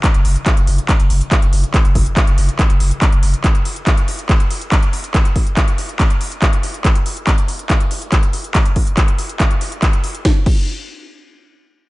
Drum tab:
CC |----------------|----------------|----------------|----------------|
HH |xxoxxxoxxxoxxxox|xxoxxxoxxxoxxxox|xxoxxxoxxxoxxxox|xxoxxxoxxxoxxxox|
CP |x---x---x---x---|x---x---x---x---|x---x---x---x---|x---x---x---x---|
SD |----------------|----------------|----------------|----------------|
BD |o---o---o---o---|o-o-o---o---o---|o---o---o---o---|o-o-o---o---o---|

CC |----------------|----------------|--x-------------|
HH |xxoxxxoxxxoxxxox|xxoxxxoxxxoxxxox|----------------|
CP |x---x---x---x---|x---x---x---x---|----------------|
SD |----------------|----------------|o---------------|
BD |o---o---o---o---|o-o-o---o---o---|o-o-------------|